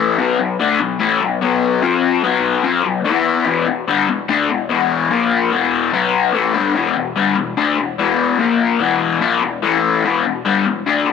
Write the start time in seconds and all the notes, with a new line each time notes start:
Already playing: A2 E3 A3
0.19 B2 F#3 B3
0.39 B2 F#3
0.60 D3 A3 D4
0.81 B2 F#3
1.00 A2 E3 A3
1.22 B2 F#3
1.41 B2 F#3 B3
1.82 F3 C4 F4
2.24 B2 F#3 B3
2.64 F3 C4 F4
2.84 B2 F#3
3.04 E3 B3 E4
3.46 E2 B2 E3
3.67 E2 B2
3.88 G2 D3 G3
4.08 E2 B2
4.29 D3 A3 D4
4.50 E2 B2
4.69 E2 B2 E3
5.10 A#2 F3 A#3
5.52 E2 B2 E3
5.93 B2 F#3 B3
6.34 A2 E3 A3
6.55 G2 D3 G3
6.75 E2 B2 E3
6.96 E2 B2
7.16 G2 D3 G3
7.36 E2 B2
7.57 D3 A3 D4
7.78 E2 B2
7.98 E2 B2 E3
8.39 A#2 F3 A#3
8.80 E2 B2 E3
9.21 A#2 F3 A#3
9.42 E2 B2
9.62 A2 E3 A3
10.04 E2 B2 E3
10.25 E2 B2
10.45 G2 D3 G3
10.66 E2 B2
10.87 D3 A3 D4
11.07 E2 B2